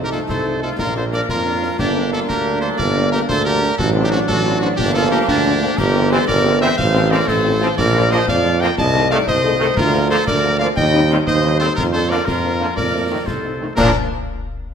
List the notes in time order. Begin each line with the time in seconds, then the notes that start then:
Already playing: C2 A3 D#4
0.04 G4 A#4
0.12 F3 A3 D#4 F4 A4, snare
0.29 C2 A4 C5, concert bass drum, snare
0.45 F3 A3 D#4
0.62 F3 A3 D#4 F4 A4
0.78 A#1 A#3 D4 F4 A#4, concert bass drum, snare
0.96 F3 A#3 D4 A4 C5
1.12 F3 A#3 D4 A#4 D5, snare
1.29 F2 F4 A#4, concert bass drum, snare
1.46 F3 A#3 D4
1.62 F3 A#3 D4, snare
1.79 G1 A#3 D4 G4, concert bass drum, snare, crash
1.96 G3 A#3 D4
2.12 G3 A#3 D4 F4 A4, snare
2.29 D2 G4 A#4, concert bass drum, snare
2.46 G3 A#3 D4
2.61 G3 A#3 D4 A4 C5
2.78 G1 A#4 D5, concert bass drum, snare
2.96 G3 A#3 D4
3.12 G3 A#3 D4 G4 A#4, snare
3.28 D2 A4 C5, concert bass drum, snare
3.45 G3 A#3 D4 G4 A#4
3.62 G3 A#3 D4, snare
3.78 A1 F#3 D4 F#4 A4, concert bass drum, snare, crash
3.95 F#3 C4 D4
4.04 D#4 G4
4.11 F#3 C4 D4 F#4, snare
4.28 A1 F#4 A4, concert bass drum, snare
4.45 F#3 C4 D4
4.61 F#3 C4 D4 F#4
4.77 G1 F3 A#3 D4 G4, concert bass drum, snare
4.94 F3 A#3 D4 F4 A4
5.11 F3 A#3 D4 G4 A#4
5.28 D2 D4 G4, concert bass drum, snare
5.45 F3 A#3 D4
5.63 F3 A#3 D4
5.78 G1 G4 A#4, concert bass drum, snare, crash
5.95 E3 C4 G4
6.11 E3 C4 G4 A4 C5, snare
6.27 G1 A#4 D5, concert bass drum, snare
6.44 E3 C4 G4
6.61 E3 C4 G4 C5 E5
6.77 A1 C5 F5, concert bass drum, snare
6.94 F3 C4 F4
7.11 F3 C4 F4 A#4 D5, snare
7.28 A1 A4 C5, concert bass drum, snare
7.44 F3 C4 F4
7.61 F3 C4 F4, snare
7.78 A#1 A#4 D5, concert bass drum, snare, crash
7.95 F3 A#3 F4
8.11 F3 A#3 F4 C5 D#5, snare
8.28 F2 D5 F5, concert bass drum, snare
8.44 F3 A#3 F4
8.60 F3 A#3 F4 D#5 G5
8.78 C2 D#5 A5, concert bass drum, snare
8.94 D#3 A3 A4
9.10 D#3 A3 A4 D5 F5, snare
9.28 C2 C5 D#5, concert bass drum, snare
9.44 D#3 A3 A4
9.60 D#3 A3 A4, snare
9.77 D2 F4 A#4, concert bass drum, snare, crash
9.94 F3 A#3 F4
10.10 F3 A#3 F4 A4 C5, snare
10.27 D2 A#4 D5, concert bass drum, snare
10.44 F3 A#3 F4
10.59 F3 A#3 F4 D5 F5
10.76 D#2 D#5 G5, concert bass drum, snare
10.93 G3 C4 D#4
11.10 D#3 G3 C4 D#4, snare
11.27 D#2 C5 D#5, concert bass drum, snare
11.44 G3 C4 D#4
11.60 D#3 G3 C4 D#4 A4 C5, snare
11.76 F2 F4 A#4, concert bass drum, snare, crash
11.92 F3 A#3 D4 A4 C5
12.10 D3 F3 A#3 D4 A#4 D5, snare
12.26 F2 F4 A#4, concert bass drum, snare
12.43 F3 A#3 D4
12.60 D3 F3 A#3 D4
12.76 F2 A#4 D5, concert bass drum, snare
12.93 F3 A3 D#4
13.09 D#3 F3 A3 D#4
13.26 C2 A4 C5, concert bass drum, snare
13.44 F3 A3 D#4
13.60 D#3 F3 A3 D#4
13.76 A#2 F3 A#3 D4 A#4, concert bass drum, snare, crash